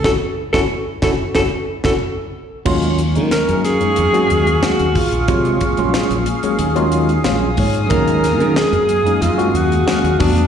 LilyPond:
<<
  \new Staff \with { instrumentName = "Ambient pad" } { \time 4/4 \key ees \minor \tempo 4 = 92 << { r1 | des'''1~ | des'''2 ees'''2~ | ees'''2.~ ees'''8 <fis'' d'''>8 | } \\ { r1 | <aes' f''>1~ | <aes' f''>1~ | <aes' f''>2.~ <aes' f''>8 a8 | } >> }
  \new Staff \with { instrumentName = "Alto saxophone" } { \time 4/4 \key ees \minor a'16 r8 a'16 r8 a'16 r16 a'16 r8 a'16 r4 | r4 bes'8 aes'4. ges'8 f'8~ | f'4. r2 r8 | bes'4 aes'4 f'8 ges'4 d'8 | }
  \new Staff \with { instrumentName = "Tine electric piano" } { \time 4/4 \key ees \minor <des' fes' ges'>16 r8 <des' fes' ges'>16 r8 <des' fes' ges'>16 r16 <des' fes' ges'>16 r8 <des' fes' ges'>16 r4 | r1 | r2. f''8 des''8 | r1 | }
  \new Staff \with { instrumentName = "Tine electric piano" } { \time 4/4 \key ees \minor r1 | <ges aes bes des' f'>8 r16 <ges aes bes des' ees'>8. r16 <ges aes bes des' ees'>16 r16 <ges aes bes des' ges'>8 r16 <ges aes bes des' aes'>16 r16 <des' f'>16 r16 | <ges aes bes f' des''>8 r16 <ges aes bes des' f'>8. r16 <ges aes bes des' aes'>16 r16 <ges aes bes des' f'>8 r16 <ges aes bes des' f'>16 r16 <des' aes'>16 r16 | <ges aes bes des' ees'>8 r16 <ges aes bes des' aes'>8. r16 <ges aes bes des' ees'>16 r16 <ges aes bes des' ges'>8 r16 <ges aes bes des' ges'>16 r16 <g a b d' fis'>8 | }
  \new Staff \with { instrumentName = "Fingered electric bass" } { \clef bass \time 4/4 \key ees \minor ges,,16 r8 ges,,16 r8 ges,,16 r16 ges,,16 r8 ges,,16 r4 | ees,8. ees16 r16 ges,8 r16 ges,8 ees,8 r16 ees,16 r16 bes,,16 | c8 r16 bes,,16 r16 bes,,16 r8 ees,4 bes,,8 aes,8 | ees,8. ees16 r16 ges,8 r16 ges,8 ees,8 r16 ees,16 e,8 | }
  \new DrumStaff \with { instrumentName = "Drums" } \drummode { \time 4/4 <bd sn>8. <bd sn>16 r8 <bd sn>8 <bd sn>8. <bd sn>16 r4 | <cymc bd>16 hh16 hh16 hh16 <hh sn>16 hh16 <hh sn>16 hh16 hh16 hh16 hh16 hh16 <hh sn>16 hh16 <hho bd>16 hh16 | <hh bd>16 hh16 <hh bd>16 hh16 <hh sn>16 hh16 hh16 hh16 hh16 hh16 hh16 hh16 <hh sn>8 <hho bd>16 hh16 | <hh bd>16 hh16 <hh sn>16 hh16 <hh sn>16 hh16 hh16 hh16 hh16 hh16 hh16 hh16 <hh sn>16 hh16 <hho bd>16 hh16 | }
>>